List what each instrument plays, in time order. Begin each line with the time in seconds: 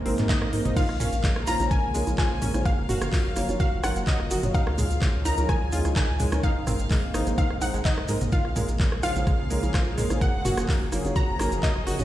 Already playing: analog synth pad C3 D#3 G#3 A#3 D#4, swell
0.06 analog synth bass G#1, grand piano G#3 C4 D#4 A#4, synth arpeggio sound C4, open hi-hat, high conga
0.18 analog synth bass G#2, clap, closed hi-hat, mid tom
0.29 grand piano C4 C5, synth arpeggio sound D#4, violin section D#5, synth pluck D#5, kick, clap, closed hi-hat
0.42 analog synth bass G#1, cross-stick
0.53 analog synth bass G#2, grand piano G#3 C4 D#4 A#4, synth arpeggio sound D#4, open hi-hat
0.65 analog synth bass G#1, grand piano G#3 C4 D#4 C5, synth arpeggio sound D#4, closed hi-hat, mid tom
0.76 analog synth pad C#3 F3 G#3 F4, grand piano G#3 C#4 F4 A#4, synth arpeggio sound F4, violin section F5, synth pluck F5, kick, closed hi-hat, crash, maracas
0.89 analog synth bass A#1, cross-stick
1.00 analog synth bass A#1, grand piano G#3 C#4 F4 A#4, synth arpeggio sound C#4, mid tom, open hi-hat, maracas
1.12 analog synth bass A#1, closed hi-hat, maracas
1.24 grand piano G#3 C#4 F4 A#4, synth arpeggio sound G#3, kick, clap, closed hi-hat, maracas
1.36 analog synth bass A#1, cross-stick
1.47 analog synth bass A#1, grand piano G#3 C#4 F4 C5, synth arpeggio sound F4, violin section A#5, synth pluck A#5, open hi-hat, high conga, maracas
1.60 analog synth bass A#1, grand piano G#3 C#4 F4 C5, closed hi-hat, maracas
1.71 grand piano G#3 C#4 F4 A#4, synth arpeggio sound C#4, synth pluck G#5, violin section G#5, kick, cross-stick, closed hi-hat, maracas
1.83 analog synth bass A#1
1.95 analog synth bass C2, grand piano G#3 C#4 F4 A#4, synth arpeggio sound G#3, open hi-hat, maracas
2.07 analog synth bass A#1, closed hi-hat, high conga, maracas
2.18 synth arpeggio sound F4, violin section G#5, synth pluck G#5, kick, cross-stick, clap, closed hi-hat, maracas
2.31 analog synth bass A#1
2.42 analog synth bass A#1, grand piano G#3 C#4 F4 A#4, synth arpeggio sound C#4, mid tom, open hi-hat, maracas
2.54 analog synth bass A#1, grand piano G#3 C#4 F4 C5, cross-stick, closed hi-hat, high conga, maracas
2.65 analog synth pad F#3, grand piano F#3 C#4 F4 A#4, synth arpeggio sound A#3, synth pluck F5, violin section F5, kick, closed hi-hat, maracas
2.78 analog synth bass F#1
2.89 analog synth bass F#1, grand piano F#3 C#4 F4 A#4, synth arpeggio sound F#4, mid tom, open hi-hat, maracas
3.02 analog synth bass F#1, cross-stick, closed hi-hat, maracas
3.12 grand piano F#3 C#4 F4 A#4, synth arpeggio sound F4, kick, clap, open hi-hat, maracas
3.25 analog synth bass F#1
3.36 analog synth bass F#1, grand piano F#3 C#4 F4 C#5, synth arpeggio sound A#3, cross-stick, open hi-hat, high conga, maracas
3.49 analog synth bass F#1, grand piano F#3 C#4 F4 C#5, closed hi-hat, maracas
3.60 grand piano F4 A#4, synth arpeggio sound F#4, synth pluck F5, violin section F5, kick, closed hi-hat, maracas
3.72 analog synth bass F#1
3.83 analog synth bass G#1, grand piano F#3 C#4 F4 A#4, synth arpeggio sound F4, synth pluck F#5, violin section F#5, cross-stick, open hi-hat, high conga, maracas
3.96 analog synth bass F#1, closed hi-hat, maracas
4.07 grand piano F#3 C#4 F4 C#5, synth arpeggio sound A#3, synth pluck D#5, violin section D#5, kick, clap, closed hi-hat, maracas
4.20 analog synth bass F#1, cross-stick
4.31 analog synth bass F#1, grand piano F#3 C#4 F4 A#4, synth arpeggio sound F#4, open hi-hat, maracas
4.43 analog synth bass F#1, grand piano F#3 C#4 F4 C#5, closed hi-hat, mid tom, maracas
4.54 analog synth pad D#3 G#3 C#4, grand piano F3 C#4 D#4 G#4, synth arpeggio sound D#4, violin section F5, synth pluck F5, kick, closed hi-hat, maracas
4.67 analog synth bass C#2, cross-stick
4.78 analog synth bass C#2, grand piano F3 C#4 D#4 G#4, synth arpeggio sound G#3, mid tom, open hi-hat, maracas
4.90 analog synth bass C#2, closed hi-hat, maracas
5.01 grand piano F3 C#4 D#4 G#4, synth arpeggio sound F4, kick, cross-stick, clap, closed hi-hat, maracas
5.14 analog synth bass C#2
5.25 analog synth bass C#2, grand piano F3 C#4 D#4 A#4, synth arpeggio sound D#4, synth pluck A#5, violin section A#5, open hi-hat, high conga, maracas
5.37 analog synth bass C#2, grand piano F3 C#4 D#4 A#4, closed hi-hat, maracas
5.49 grand piano F3 C#4 D#4, synth arpeggio sound G#3, violin section G#5, synth pluck G#5, kick, cross-stick, closed hi-hat, maracas
5.61 analog synth bass C#2
5.72 analog synth bass D#2, grand piano F3 C#4 D#4 G#4, synth arpeggio sound F4, open hi-hat, maracas
5.85 analog synth bass C#2, cross-stick, closed hi-hat, high conga, maracas
5.96 grand piano F3 C#4 D#4 A#4, synth arpeggio sound D#4, synth pluck G#5, violin section G#5, kick, clap, closed hi-hat, maracas
6.09 analog synth bass C#2
6.20 analog synth bass C#2, grand piano F3 C#4 D#4 G#4, synth arpeggio sound G#3, mid tom, open hi-hat, maracas
6.32 analog synth bass C#2, grand piano F3 C#4 D#4 A#4, cross-stick, closed hi-hat, high conga, maracas
6.43 analog synth pad C3 G#3 A#3 D#4, grand piano G#3, synth arpeggio sound D#4, synth pluck F5, violin section F5, kick, closed hi-hat, maracas
6.56 analog synth bass G#1
6.67 analog synth bass G#1, grand piano G#3 C4 D#4 A#4, synth arpeggio sound C4, cross-stick, mid tom, open hi-hat, maracas
6.79 analog synth bass G#1, closed hi-hat, maracas
6.90 synth arpeggio sound G#3, grand piano G#3 C4 D#4 A#4, kick, clap, open hi-hat, maracas
7.03 analog synth bass G#1
7.14 analog synth bass G#1, grand piano G#3 C4 D#4 C5, synth arpeggio sound D#4, cross-stick, open hi-hat, high conga, maracas
7.27 analog synth bass G#1, grand piano G#3 C4 D#4 C5, closed hi-hat, maracas
7.38 grand piano G#3 C4 D#4 A#4, synth arpeggio sound C4, synth pluck F5, violin section F5, kick, closed hi-hat, maracas
7.50 analog synth bass G#1, cross-stick
7.61 analog synth bass A#1, grand piano G#3 C4 D#4 C5, synth arpeggio sound D#4, synth pluck F#5, violin section F#5, open hi-hat, high conga, maracas
7.74 analog synth bass G#1, synth arpeggio sound G#3, closed hi-hat, maracas
7.85 grand piano G#3 C4 D#4, synth arpeggio sound D#4, violin section D#5, synth pluck D#5, kick, clap, closed hi-hat, maracas
7.98 analog synth bass G#1, cross-stick
8.08 analog synth bass G#2, synth arpeggio sound G#3, grand piano G#3 C4 D#4 A#4, open hi-hat, maracas
8.21 analog synth bass G#1, closed hi-hat, mid tom, maracas
8.32 analog synth pad C#3 F3 A#3 G#4, grand piano G#3 C#4 F4 A#4, synth arpeggio sound F4, synth pluck F5, violin section F5, kick, closed hi-hat, maracas
8.45 analog synth bass A#1, cross-stick
8.56 analog synth bass A#1, grand piano G#3 C#4 F4 A#4, synth arpeggio sound G#3, mid tom, open hi-hat, maracas
8.68 analog synth bass A#1, closed hi-hat, maracas
8.80 grand piano G#3 C#4 F4 A#4, synth arpeggio sound G#3, kick, clap, closed hi-hat, maracas
8.92 analog synth bass A#1, cross-stick
9.03 analog synth bass A#1, grand piano G#3 C#4 F4 C5, synth arpeggio sound F4, synth pluck F5, violin section F5, open hi-hat, high conga, maracas
9.16 analog synth bass A#1, grand piano G#3 C#4 F4 C5, closed hi-hat, maracas
9.27 grand piano G#3 C#4 F4 A#4, synth arpeggio sound G#3, kick, cross-stick, closed hi-hat, maracas
9.39 analog synth bass A#1
9.50 analog synth bass C2, grand piano G#3 C#4 F4 A#4, synth arpeggio sound G#3, open hi-hat, maracas
9.63 analog synth bass A#1, closed hi-hat, high conga, maracas
9.74 grand piano G#3 C#4 F4 C5, synth arpeggio sound F4, kick, cross-stick, clap, closed hi-hat, maracas
9.87 analog synth bass A#1
9.98 analog synth bass A#1, synth arpeggio sound G#3, grand piano G#3 C#4 F4 A#4, mid tom, open hi-hat, maracas
10.10 analog synth bass A#1, grand piano G#3 C#4 F4 C5, cross-stick, closed hi-hat, high conga, maracas
10.21 analog synth pad C#3 F#3, grand piano F#3 A#4, synth arpeggio sound A#3, synth pluck F#5, violin section F#5, kick, closed hi-hat, maracas
10.34 analog synth bass F#1
10.45 analog synth bass F#1, grand piano F#3 C#4 F4 A#4, synth arpeggio sound F#4, mid tom, open hi-hat, maracas
10.57 analog synth bass F#1, cross-stick, closed hi-hat, maracas
10.69 grand piano F#3 C#4 F4 A#4, synth arpeggio sound A#3, kick, clap, open hi-hat, maracas
10.81 analog synth bass F#1
10.92 analog synth bass F#1, grand piano F#3 C#4 F4 C#5, synth arpeggio sound A#3, cross-stick, open hi-hat, high conga, maracas
11.05 analog synth bass F#1, grand piano F#3 C#4 F4 C#5, closed hi-hat, maracas
11.16 grand piano F#3 C#4 F4 A#4, synth arpeggio sound F#4, violin section A#5, synth pluck A#5, kick, closed hi-hat, maracas
11.28 analog synth bass F#1
11.39 analog synth bass G#1, grand piano F#3 C#4 F4 A#4, synth arpeggio sound A#3, cross-stick, open hi-hat, high conga, maracas
11.52 analog synth bass F#1, closed hi-hat, maracas
11.63 grand piano F#3 C#4 F4 C#5, synth arpeggio sound A#3, violin section D#5, synth pluck D#5, kick, clap, closed hi-hat, maracas
11.76 analog synth bass F#1, cross-stick
11.87 analog synth bass F#1, grand piano F#3 C#4 F4 A#4, synth arpeggio sound F#4, open hi-hat, maracas
11.99 analog synth bass F#1, grand piano F#3 C#4 F4 C#5, closed hi-hat, mid tom, maracas